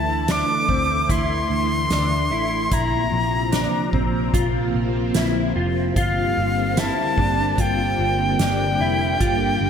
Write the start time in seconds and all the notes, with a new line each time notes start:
Already playing: D2 D3 E3 A3 E4 A5
0.28 D4 D6, snare, closed hi-hat
0.69 D2 C4, kick
1.09 D2 E4 C6, kick, closed hi-hat
1.50 D2
1.90 D2 D4, snare, closed hi-hat
2.31 A1 E4
2.71 A#1 C3 F3 A#3 C4 E4 A#5, kick, closed hi-hat
3.12 A#1
3.52 D4, snare, closed hi-hat
3.93 A#1 C4, kick
4.34 A#1 F4, kick, closed hi-hat
4.75 A#1
5.14 A#1 E4, snare, closed hi-hat
5.56 F1 F4
5.96 G1 D3 G3 A#3 F4 F5, kick, closed hi-hat
6.37 G1
6.77 E4 A5, snare, closed hi-hat
7.18 G1 D4, kick
7.58 G1 F4 G5, kick, closed hi-hat
7.99 G1
8.39 G1 D4, snare, closed hi-hat
8.80 F1 E4
9.20 G1 D4 F4, kick, closed hi-hat
9.61 G1